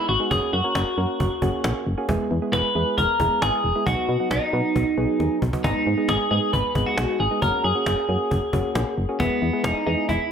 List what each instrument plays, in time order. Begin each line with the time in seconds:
0.09 fm bass G#1, clean electric guitar F#4
0.20 synth keys G#3 B3 D#4 G#4
0.31 fm bass F#1, synth keys A#3 C#4 F#4 G#4, clean electric guitar G#4, cajon bass
0.53 fm bass F#2, clean electric guitar F#4
0.64 synth keys A#3 C#4 F#4 A#4
0.75 fm bass F#1, cajon slap
0.98 fm bass F#2, synth keys A#3 C#4 F#4 A#4
1.20 fm bass F#1, cajon bass
1.42 fm bass F#1, synth keys A#3 C#4 F#4 G#4, cajon bass
1.64 fm bass A#1, cajon slap
1.87 fm bass F#1
1.98 synth keys A#3 C#4 F#4 G#4
2.09 fm bass E1, synth keys G#3 B3 E4 G#4, cajon bass
2.31 fm bass E2
2.42 synth keys G#3 B3 E4 G#4
2.53 fm bass E1, clean electric guitar B4, cajon slap
2.75 fm bass E2, synth keys G#3 B3 E4 G#4
2.98 fm bass E1, clean electric guitar A#4, cajon bass
3.20 fm bass E1, synth keys G#3 B3 E4 G#4, cajon bass
3.42 fm bass G#1, clean electric guitar G#4, cajon slap
3.64 fm bass E1
3.75 synth keys G#3 B3 E4 G#4
3.86 fm bass B1, synth keys F#3 B3 D#4 F#4, clean electric guitar F#4, cajon bass
4.09 fm bass B2
4.20 synth keys F#3 B3 D#4 F#4
4.31 fm bass B1, clean electric guitar D#4, cajon slap
4.53 fm bass B2, synth keys F#3 B3 D#4 F#4
4.76 fm bass B1, cajon bass
4.98 fm bass B1, synth keys F#3 B3 D#4 G#4
5.20 fm bass D#2, cajon slap
5.42 fm bass B1, cajon bass
5.53 synth keys F#3 B3 D#4 F#4, cajon bass
5.64 fm bass G#1, synth keys G#3 B3 D#4 G#4, clean electric guitar D#4, cajon bass
5.87 fm bass G#2
5.98 synth keys G#3 B3 D#4 G#4
6.09 fm bass G#1, clean electric guitar G#4, cajon slap
6.31 fm bass G#2, synth keys G#3 B3 D#4 G#4, clean electric guitar G#4
6.53 fm bass G#1, clean electric guitar B4, cajon bass
6.75 fm bass G#1, synth keys G#3 B3 D#4 G#4, cajon bass
6.86 clean electric guitar F#4
6.98 fm bass B1, cajon slap
7.20 fm bass G#1, clean electric guitar G#4
7.31 synth keys G#3 B3 D#4 G#4
7.42 fm bass F#1, synth keys A#3 C#4 F#4 G#4, clean electric guitar A#4, cajon bass
7.64 fm bass F#2, clean electric guitar G#4
7.75 synth keys A#3 C#4 F#4 G#4
7.86 fm bass F#1, cajon slap
8.09 fm bass F#2, synth keys A#3 C#4 F#4 G#4
8.31 fm bass F#1, cajon bass
8.53 fm bass F#1, synth keys A#3 C#4 F#4 G#4, cajon bass
8.75 fm bass A#1, cajon slap
8.98 fm bass F#1
9.09 synth keys A#3 C#4 F#4 G#4
9.20 fm bass E1, synth keys G#3 B3 E4 G#4, clean electric guitar B3, cajon bass
9.42 fm bass E2
9.53 synth keys G#3 B3 E4 G#4
9.64 fm bass E1, clean electric guitar D#4, cajon slap
9.87 fm bass E2, synth keys G#3 B3 E4 G#4, clean electric guitar D#4
10.09 fm bass E1, clean electric guitar E4, cajon bass